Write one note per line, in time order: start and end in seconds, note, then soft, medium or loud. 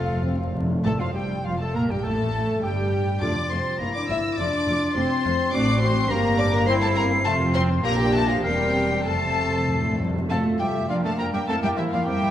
0.00 0.62 F1 medium
0.00 0.62 F2 medium
0.00 0.16 A3 medium
0.00 0.62 A3 medium
0.00 0.62 C4 medium
0.00 0.16 F4 medium
0.00 0.50 F4 medium
0.00 0.54 F4 medium
0.00 0.49 A4 medium
0.00 0.51 F5 medium
0.08 0.15 F2 medium
0.16 0.22 F2 medium
0.22 0.30 F2 medium
0.22 0.36 C4 medium
0.31 0.37 F2 medium
0.39 0.46 F2 medium
0.47 0.53 F2 medium
0.53 0.61 F2 loud
0.53 0.83 A3 medium
0.62 0.68 F2 loud
0.70 0.77 F2 loud
0.84 0.90 A1 medium
0.84 1.40 F2 medium
0.84 0.90 A2 medium
0.84 0.98 A3 medium
0.84 0.91 A3 medium
0.84 0.99 A4 medium
0.84 0.92 A4 medium
0.84 1.01 A5 medium
0.84 0.90 A5 medium
0.98 1.06 F2 medium
0.98 1.14 F3 medium
0.98 1.15 F3 medium
0.98 1.07 F4 medium
0.98 1.06 F4 medium
0.98 1.14 F5 medium
0.98 1.15 F5 medium
1.13 1.44 G1 medium
1.13 1.44 G2 medium
1.13 1.43 G3 medium
1.13 1.45 G3 medium
1.13 1.22 G4 medium
1.13 1.28 G4 medium
1.13 1.46 G5 medium
1.13 1.44 G5 medium
1.44 1.59 F1 medium
1.44 1.59 F2 medium
1.44 1.59 F3 medium
1.44 1.59 F4 medium
1.44 1.60 F4 medium
1.44 1.59 F5 medium
1.59 1.74 A2 medium
1.59 1.65 A3 medium
1.59 1.75 A3 medium
1.59 1.77 A4 medium
1.59 1.75 A4 medium
1.59 1.78 A5 medium
1.59 1.75 A5 medium
1.72 1.89 A#1 medium
1.72 1.89 A#2 medium
1.72 1.88 A#3 medium
1.72 1.89 A#3 medium
1.72 1.92 A#4 medium
1.72 1.90 A#4 medium
1.72 1.81 A#5 medium
1.76 1.92 A#5 medium
1.88 2.04 G2 medium
1.88 1.95 G3 medium
1.88 2.04 G3 medium
1.88 2.03 G4 medium
1.88 2.05 G4 medium
1.88 2.04 G5 medium
2.02 2.61 A1 medium
2.02 2.88 F2 medium
2.02 2.61 A2 medium
2.02 2.60 A3 medium
2.02 2.62 A3 medium
2.02 2.65 A4 medium
2.02 2.61 A4 medium
2.02 2.61 A5 medium
2.02 2.63 A5 loud
2.62 3.20 G1 medium
2.62 3.20 G2 medium
2.62 3.21 G3 medium
2.62 3.21 G4 medium
2.62 3.20 G5 medium
2.62 3.21 G5 medium
3.20 3.29 F1 medium
3.20 3.76 F2 medium
3.20 3.30 F2 medium
3.20 3.30 A3 medium
3.20 3.34 D4 loud
3.20 3.76 F4 medium
3.20 3.30 F4 medium
3.20 3.50 D5 medium
3.20 3.51 D6 loud
3.20 3.80 A6 medium
3.50 3.59 F1 medium
3.50 3.59 F2 medium
3.50 3.59 A3 medium
3.50 3.79 C4 medium
3.50 3.60 F4 medium
3.50 3.80 C5 medium
3.50 3.80 C6 medium
3.79 3.89 G1 medium
3.79 3.88 G2 medium
3.79 3.94 A#3 medium
3.79 3.89 A#3 medium
3.79 4.37 E4 medium
3.79 3.89 E4 medium
3.79 3.95 A#4 medium
3.79 3.94 A#5 medium
3.79 4.38 A#6 medium
3.95 4.09 D4 medium
3.95 4.01 D5 medium
3.95 4.09 D6 loud
4.09 4.18 G1 medium
4.09 4.17 G2 medium
4.09 4.18 A#3 medium
4.09 4.38 E4 medium
4.09 4.18 E4 medium
4.09 4.18 E5 medium
4.09 4.38 E6 loud
4.37 4.47 F1 medium
4.37 4.46 F2 medium
4.37 4.47 A3 medium
4.37 4.95 D4 loud
4.37 5.55 F4 medium
4.37 4.48 F4 medium
4.37 4.94 D5 loud
4.37 4.95 D6 loud
4.37 5.52 A6 medium
4.67 4.76 F1 medium
4.67 4.75 F2 medium
4.67 4.76 A3 medium
4.67 4.76 F4 medium
4.95 5.05 F1 medium
4.95 5.03 F2 medium
4.95 5.04 A3 medium
4.95 5.52 C4 loud
4.95 5.04 F4 medium
4.95 5.52 C5 medium
4.95 5.52 C6 loud
5.24 5.33 F1 medium
5.24 5.32 F2 medium
5.24 5.33 A3 medium
5.24 5.33 F4 medium
5.52 6.06 A1 medium
5.52 6.06 A2 medium
5.52 6.06 C4 medium
5.52 5.66 D4 loud
5.52 6.06 F#4 medium
5.52 6.12 F#4 medium
5.52 5.81 D5 loud
5.52 5.81 D6 loud
5.52 6.10 C7 medium
5.81 6.10 C4 loud
5.81 6.09 C5 loud
5.81 6.09 C6 loud
6.09 7.26 G1 loud
6.09 7.25 G2 medium
6.09 6.66 A#3 medium
6.09 6.39 A#3 loud
6.09 6.68 D4 medium
6.09 6.67 G4 medium
6.09 6.38 A#4 loud
6.09 6.38 A#5 loud
6.09 6.68 A#6 medium
6.38 6.53 D4 loud
6.38 6.53 D5 loud
6.38 6.53 D6 loud
6.52 6.67 A#3 loud
6.52 6.66 A#4 loud
6.52 6.68 A#5 loud
6.66 7.25 C4 medium
6.66 6.75 C4 loud
6.66 7.25 E4 loud
6.66 7.24 E4 loud
6.66 6.72 C5 loud
6.66 6.73 C6 loud
6.66 7.52 C7 medium
6.81 6.89 A3 loud
6.81 6.95 A4 loud
6.81 6.87 A5 loud
6.96 7.10 A#3 loud
6.96 7.04 A#4 loud
6.96 7.04 A#5 loud
7.25 7.84 F1 loud
7.25 7.84 F2 loud
7.25 7.39 A3 loud
7.25 7.83 C4 loud
7.25 7.82 F4 medium
7.25 7.83 F4 loud
7.25 7.33 A4 loud
7.25 7.33 A5 loud
7.54 7.67 C4 loud
7.54 7.62 C5 loud
7.54 7.62 C6 loud
7.83 8.40 A#1 loud
7.83 8.39 A#2 loud
7.83 7.90 A#3 loud
7.83 8.39 D4 medium
7.83 8.39 G4 medium
7.83 8.40 G4 loud
7.83 7.99 A#4 loud
7.83 7.98 A#5 loud
7.83 8.40 A#6 loud
7.98 8.13 G3 medium
7.98 8.13 G4 loud
7.98 8.14 G5 loud
8.13 8.28 A3 loud
8.13 8.28 A4 loud
8.13 8.29 A5 loud
8.28 8.44 F3 medium
8.28 8.34 F4 medium
8.28 8.45 F5 loud
8.43 9.06 E1 medium
8.43 9.05 E2 medium
8.43 9.05 G3 loud
8.43 9.04 C4 medium
8.43 9.05 G4 loud
8.43 9.04 A#4 medium
8.43 8.89 A#4 medium
8.43 9.04 G5 loud
8.43 9.04 C7 medium
9.05 10.09 F1 medium
9.05 9.62 F2 medium
9.05 9.13 F2 soft
9.05 9.98 A3 medium
9.05 10.07 C4 medium
9.05 10.09 A4 medium
9.05 9.98 A4 medium
9.05 9.98 A4 loud
9.05 9.99 A5 loud
9.05 9.98 C7 medium
9.15 9.21 F2 soft
9.23 9.29 F2 soft
9.30 9.36 F2 medium
9.37 9.44 F2 medium
9.46 9.52 F2 medium
9.54 9.60 F2 medium
9.61 9.67 F2 medium
9.68 9.74 F2 medium
9.68 9.97 A2 medium
9.75 9.83 F2 medium
9.84 9.91 F2 medium
9.92 9.99 F2 medium
10.00 10.07 F2 loud
10.00 10.30 G2 medium
10.08 10.15 F2 loud
10.16 10.23 F2 loud
10.29 10.37 F2 medium
10.29 10.57 A3 medium
10.29 10.85 A3 medium
10.29 10.35 C4 medium
10.29 10.85 F4 medium
10.29 10.85 A4 medium
10.29 10.43 A4 medium
10.29 10.38 F5 medium
10.29 10.38 A5 medium
10.29 10.37 A5 medium
10.45 10.51 F2 medium
10.45 10.51 A3 medium
10.59 10.66 F2 medium
10.59 10.66 F3 medium
10.59 10.89 G3 medium
10.59 10.88 G4 medium
10.59 10.89 E5 medium
10.59 10.67 G5 medium
10.59 10.66 G5 medium
10.74 10.81 F2 medium
10.74 10.80 A3 medium
10.88 10.95 F2 medium
10.88 11.03 F3 medium
10.88 12.31 A#3 medium
10.88 11.48 D4 medium
10.88 10.95 D4 medium
10.88 11.03 F4 medium
10.88 12.31 A#4 medium
10.88 10.95 D5 medium
10.88 10.94 F5 medium
10.88 10.95 F5 medium
11.03 11.11 F2 medium
11.03 11.18 A3 medium
11.03 11.10 A#3 medium
11.03 11.11 A4 medium
11.03 11.19 F5 medium
11.03 11.16 A5 medium
11.03 11.11 A5 medium
11.17 11.25 F2 medium
11.17 11.25 F3 medium
11.17 11.33 A#3 medium
11.17 11.33 A#4 medium
11.17 11.25 G5 medium
11.17 11.32 A#5 medium
11.17 11.25 A#5 loud
11.33 11.40 F2 medium
11.33 11.39 G3 medium
11.33 11.40 A#3 medium
11.33 11.40 G4 medium
11.33 11.40 E5 medium
11.33 11.39 G5 medium
11.33 11.49 G5 medium
11.47 11.54 F2 medium
11.47 11.53 A3 medium
11.47 11.54 C4 medium
11.47 12.31 E4 medium
11.47 11.55 A4 loud
11.47 11.55 F5 medium
11.47 11.62 A5 loud
11.47 11.54 A5 loud
11.62 11.69 F2 medium
11.62 11.68 G3 medium
11.62 11.69 A#3 medium
11.62 11.79 G4 medium
11.62 11.70 E5 medium
11.62 11.69 G5 medium
11.62 11.70 G5 medium
11.76 11.84 F2 medium
11.76 11.82 E3 medium
11.76 11.84 G3 medium
11.76 11.94 E4 medium
11.76 11.84 C5 medium
11.76 11.82 E5 medium
11.76 11.83 E5 loud
11.91 11.98 F2 medium
11.91 11.97 F3 medium
11.91 11.98 A#3 medium
11.91 12.07 F4 medium
11.91 11.99 D5 medium
11.91 12.06 F5 medium
11.91 12.07 F5 medium
12.06 12.13 F2 loud
12.06 12.31 G3 medium
12.06 12.12 C4 medium
12.06 12.31 G4 loud
12.06 12.31 E5 medium
12.06 12.31 G5 loud
12.06 12.31 G5 medium
12.21 12.28 F2 medium
12.21 12.27 A#3 medium